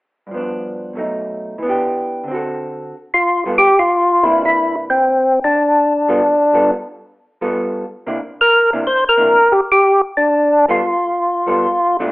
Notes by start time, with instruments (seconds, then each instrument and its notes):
0.27 hollow-body jazz guitar G2
0.31 hollow-body jazz guitar F3 B3
0.37 hollow-body jazz guitar D4
0.93 hollow-body jazz guitar B2 F#3 A3
0.98 hollow-body jazz guitar D#4
1.58 hollow-body jazz guitar E3
1.63 hollow-body jazz guitar B3 D4
1.69 hollow-body jazz guitar G4
2.24 hollow-body jazz guitar D3
2.28 hollow-body jazz guitar C4 F#4
2.34 hollow-body jazz guitar A4
3.14 tonewheel organ F4
3.46 hollow-body jazz guitar G3 B3 F4 A4
3.58 tonewheel organ G4
3.79 tonewheel organ F4
4.23 hollow-body jazz guitar C3 E3 A#3 D4, tonewheel organ E4
4.45 tonewheel organ E4
4.90 tonewheel organ C4
5.44 tonewheel organ D4
6.08 hollow-body jazz guitar G3 B3 F4 A4
6.53 hollow-body jazz guitar G3 B3 F4 A4
7.41 hollow-body jazz guitar G3 B3 F4 A4
8.06 hollow-body jazz guitar C3 A#3 D4 E4
8.41 tonewheel organ A#4
8.73 hollow-body jazz guitar C3 A#3 D4 E4
8.87 tonewheel organ C5
9.09 tonewheel organ A#4
9.17 hollow-body jazz guitar C3 A#3 D4 E4
9.52 tonewheel organ G4
9.72 tonewheel organ G4
10.17 tonewheel organ D4
10.68 hollow-body jazz guitar G3 B3 F4 A4, tonewheel organ F4
11.46 hollow-body jazz guitar G3 B3 F4 A4
11.99 hollow-body jazz guitar B2 A3 D4 F4